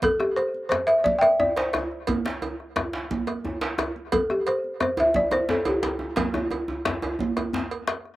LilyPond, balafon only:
\new Staff \with { instrumentName = "Balafon" } { \time 12/8 \key c \major \tempo 4. = 117 a'8 g'8 c''4 c''8 e''8 d''16. g''32 e''8 d''8 c''4~ c''32 r16. | r1. | a'8 g'8 c''4 c''8 e''8 d''8 c''8 a'8 g'4~ g'32 r16. | r1. | }